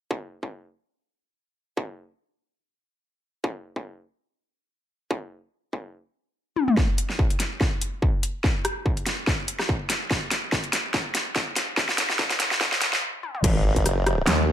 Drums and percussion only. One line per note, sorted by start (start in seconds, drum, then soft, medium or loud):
0.11 kick loud
0.43 kick soft
1.77 kick loud
3.44 kick loud
3.76 kick medium
5.11 kick loud
5.73 kick medium
6.56 high tom medium
6.68 mid tom medium
6.77 kick medium
6.77 snare soft
6.98 closed hi-hat medium
7.10 snare soft
7.19 kick medium
7.30 closed hi-hat soft
7.40 snare soft
7.40 closed hi-hat medium
7.61 kick medium
7.61 snare soft
7.81 closed hi-hat medium
8.02 kick medium
8.23 closed hi-hat medium
8.44 kick medium
8.44 snare medium
8.65 cross-stick medium
8.65 closed hi-hat medium
8.86 kick medium
8.97 closed hi-hat soft
9.06 snare medium
9.06 closed hi-hat medium
9.27 kick medium
9.27 snare medium
9.48 closed hi-hat medium
9.59 cross-stick soft
9.59 snare medium
9.69 kick medium
9.90 snare medium
9.90 closed hi-hat medium
10.11 kick medium
10.11 snare medium
10.31 snare medium
10.31 closed hi-hat medium
10.52 kick loud
10.52 snare medium
10.64 closed hi-hat soft
10.73 snare medium
10.73 closed hi-hat medium
10.94 kick loud
10.94 snare medium
11.15 snare medium
11.15 closed hi-hat medium
11.36 kick loud
11.36 snare medium
11.56 snare medium
11.56 closed hi-hat medium
11.77 kick medium
11.77 snare medium
11.89 snare medium
11.98 snare loud
11.98 closed hi-hat medium
12.10 snare medium
12.19 kick loud
12.19 snare medium
12.30 snare medium
12.30 closed hi-hat soft
12.40 snare medium
12.40 closed hi-hat medium
12.51 snare medium
12.61 kick medium
12.61 snare loud
12.72 snare medium
12.81 snare loud
12.81 closed hi-hat medium
12.93 snare medium
13.23 high tom medium
13.35 mid tom medium
13.44 kick loud
13.44 closed hi-hat medium
13.44 crash loud
13.76 kick medium
13.76 closed hi-hat medium
13.86 cross-stick medium
13.86 closed hi-hat medium
14.07 cross-stick medium
14.07 closed hi-hat medium
14.27 snare loud
14.27 clap medium
14.27 closed hi-hat medium